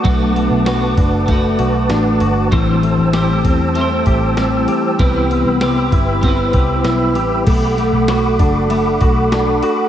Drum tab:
CC |--------|--------|--------|x-------|
RD |xxxxxxxx|xxxxxxxx|xxxxxxxx|xxxxxxxx|
TB |--x---x-|--x---x-|--x---x-|--x---x-|
SD |--o---o-|--o---o-|--o---o-|--o---o-|
BD |o--oo---|o--o-o--|o--ooo--|o--o-o--|